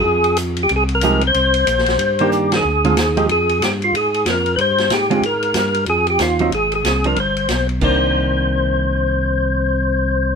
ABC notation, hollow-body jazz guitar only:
X:1
M:4/4
L:1/8
Q:"Swing" 1/4=186
K:Cm
V:1 name="Hollow-body jazz guitar"
z6 [F,A,EG] z | z4 z [E,B,D]3 | z [D,A,CF] z [F,A,EG] z4 | z6 z [D,A,CF] |
z6 z [^F,CE] | z3 [F,CD] z4 | [E,B,D]8- | [E,B,D]8 |]